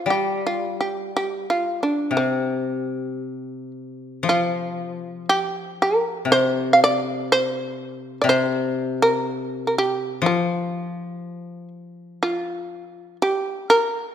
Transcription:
0.06 3.19 G3 medium
0.10 0.41 G4 medium
0.47 0.76 F4 medium
0.81 1.10 G4 medium
1.17 1.45 G4 medium
1.50 1.79 F4 medium
1.83 2.13 D4 medium
2.11 5.25 C3 medium
2.17 3.71 C4 medium
4.23 7.27 F3 medium
4.29 5.25 F4 medium
5.29 5.75 G4 medium
5.82 6.27 A#4 medium
6.25 8.23 C3 medium
6.32 6.70 C5 medium
6.73 6.79 F5 medium
6.84 7.27 D5 loud
7.32 8.17 C5 medium
8.22 10.23 C3 medium
8.22 8.27 D5 medium
8.29 8.97 C5 medium
9.02 9.65 A#4 medium
9.67 9.74 A#4 medium
9.78 10.22 G4 medium
10.22 13.18 F3 medium
10.26 11.68 F4 medium
12.23 13.16 F4 medium
13.22 13.67 G4 medium
13.70 14.15 A#4 medium

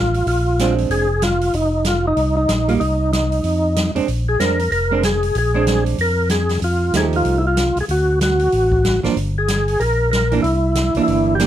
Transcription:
0.00 0.23 A1 medium
0.00 0.27 F4 medium
0.14 open hi-hat soft
0.26 0.86 A#1 medium
0.26 0.75 F4 medium
0.26 open hi-hat soft
0.59 1.06 G#3 medium
0.59 1.06 C4 medium
0.59 1.07 D4 medium
0.59 snare medium
0.59 closed hi-hat medium
0.78 open hi-hat soft
0.90 1.50 F1 medium
0.90 1.23 G#4 loud
0.90 open hi-hat soft
1.22 1.55 F4 medium
1.22 snare medium
1.22 closed hi-hat medium
1.41 open hi-hat soft
1.53 2.14 F1 medium
1.53 1.87 D#4 medium
1.53 open hi-hat soft
1.85 2.06 F4 medium
1.85 snare medium
1.85 closed hi-hat medium
2.07 2.35 D#4 loud
2.17 2.46 C2 medium
2.17 open hi-hat soft
2.37 2.69 D#4 medium
2.49 2.78 A#1 medium
2.49 snare medium
2.49 closed hi-hat medium
2.68 2.79 G3 medium
2.68 2.80 A#3 medium
2.68 2.80 D#4 medium
2.68 2.74 F4 medium
2.68 open hi-hat soft
2.80 3.41 C2 medium
2.80 3.12 D#4 medium
2.80 open hi-hat soft
3.13 3.91 D#4 medium
3.13 snare medium
3.13 closed hi-hat medium
3.32 open hi-hat soft
3.43 3.91 F2 medium
3.43 open hi-hat soft
3.76 snare medium
3.76 closed hi-hat medium
3.95 4.01 F2 soft
3.95 4.06 G#3 medium
3.95 4.07 C4 medium
3.95 4.07 D4 medium
3.95 open hi-hat soft
4.08 4.37 A#1 medium
4.08 open hi-hat soft
4.29 4.39 G#4 medium
4.40 4.69 F2 medium
4.40 4.57 G#3 soft
4.40 4.57 C4 soft
4.40 4.57 D4 medium
4.40 4.71 A#4 medium
4.40 snare medium
4.40 closed hi-hat soft
4.59 open hi-hat soft
4.71 5.32 F1 medium
4.71 5.04 A#4 medium
4.71 open hi-hat soft
4.91 5.02 G#3 medium
4.91 5.02 C4 medium
4.91 5.02 D4 medium
5.03 5.37 G#4 medium
5.03 snare medium
5.03 closed hi-hat medium
5.23 open hi-hat soft
5.35 5.95 A#1 medium
5.35 5.84 G#4 medium
5.35 open hi-hat soft
5.54 5.96 G#3 medium
5.54 5.96 C4 medium
5.54 5.97 D4 medium
5.67 snare medium
5.67 closed hi-hat soft
5.86 open hi-hat soft
5.98 6.58 F2 medium
5.98 6.29 A#4 medium
5.98 open hi-hat soft
6.29 6.60 G#4 medium
6.29 snare medium
6.29 closed hi-hat soft
6.49 snare soft
6.49 open hi-hat soft
6.61 6.91 F2 medium
6.61 6.96 F4 medium
6.61 open hi-hat soft
6.93 7.23 D#2 medium
6.93 7.41 F3 soft
6.93 7.41 A3 soft
6.93 7.41 D#4 medium
6.93 7.41 G4 soft
6.93 7.05 G#4 medium
6.93 snare medium
6.93 closed hi-hat medium
7.13 7.38 F4 medium
7.13 open hi-hat soft
7.25 7.72 C2 medium
7.25 open hi-hat soft
7.38 7.46 E4 medium
7.47 7.78 F4 medium
7.57 snare medium
7.57 closed hi-hat medium
7.76 7.82 C2 soft
7.76 open hi-hat soft
7.81 7.85 G#4 medium
7.88 8.49 D2 medium
7.88 8.19 F#4 medium
7.88 open hi-hat soft
8.21 9.00 F#4 medium
8.21 snare medium
8.21 closed hi-hat medium
8.40 open hi-hat soft
8.52 9.00 A1 medium
8.52 open hi-hat soft
8.72 kick soft
8.85 snare medium
8.85 closed hi-hat soft
9.03 9.10 A1 soft
9.03 9.15 F3 medium
9.03 9.15 A#3 medium
9.03 9.16 D4 medium
9.03 snare soft
9.03 open hi-hat soft
9.16 9.76 G1 medium
9.16 open hi-hat soft
9.38 9.82 G#4 medium
9.48 snare medium
9.48 closed hi-hat medium
9.68 open hi-hat soft
9.80 10.40 A#1 medium
9.80 10.10 A#4 loud
9.80 open hi-hat soft
10.11 10.41 A#4 medium
10.11 snare medium
10.11 closed hi-hat medium
10.32 10.42 E3 medium
10.32 10.43 A#3 medium
10.32 10.43 D4 medium
10.32 open hi-hat soft
10.42 10.90 C2 medium
10.42 11.02 E4 medium
10.42 open hi-hat soft
10.75 snare medium
10.75 closed hi-hat medium
10.95 11.01 C2 soft
10.95 11.37 E3 medium
10.95 11.37 A#3 medium
10.95 11.37 D4 medium
10.95 open hi-hat soft
11.03 11.34 E4 loud
11.08 11.47 G1 medium
11.08 open hi-hat soft
11.35 11.47 G4 medium
11.40 11.47 E3 medium
11.40 11.47 A#3 medium
11.40 11.47 D4 medium
11.40 snare medium
11.40 closed hi-hat soft

